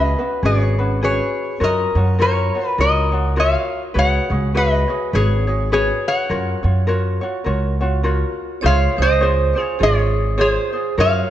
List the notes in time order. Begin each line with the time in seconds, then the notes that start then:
Already playing: C#2 C#4 F#4 G#4 B4 D#5
0.18 C#4 F#4 B4
0.43 G#1 C#4 F#4 G#4 B4 C#5
0.78 C#4 F#4 B4
1.03 C#4 F#4 G#4 B4 C#5
1.60 F#2 F4 F#4 A#4 C#5
1.64 D#5
1.95 F#2 F4 F#4 C#5
2.19 F4 F#4 A#4 C#5
2.55 F4 F#4 C#5
2.68 B4
2.78 C#2 F4 F#4 A#4 C#5 D#5
3.12 F4 F#4 C#5
3.36 F4 F#4 A#4 C#5 F5
3.94 C#2 F#4 G#4 B4 C#5
3.99 C#5 F#5
4.30 C#2 F#4 G#4 C#5
4.54 F#4 G#4 B4 C#5 D#5
4.88 F#4 G#4 C#5
5.13 G#1 F#4 G#4 B4 C#5
5.47 F#4 G#4 C#5
5.72 F#4 G#4 B4 C#5
6.08 C#5 F#5
6.29 F#2 F4 F#4 A#4 C#5
6.63 F#2 F4 F#4 C#5
6.87 F4 F#4 A#4 C#5
7.21 F4 F#4 C#5
7.44 C#2 F4 F#4 A#4 C#5
7.81 F4 F#4 C#5
8.03 F4 F#4 A#4 C#5
8.61 C#2 F4 G#4 C5 C#5
8.66 C#5 F5
8.96 C#2 F4 G#4 C5
9.02 C5 D#5
9.21 F4 G#4 C5 C#5
9.56 F4 G#4 C5
9.61 C#5
9.79 G#1 F4 G#4 C#5
9.83 G#4 C#5
10.38 F4 G#4 C5 C#5
10.52 C5
10.72 F4 G#4 C5
10.98 F#2 F4 F#4 A#4 C#5 F5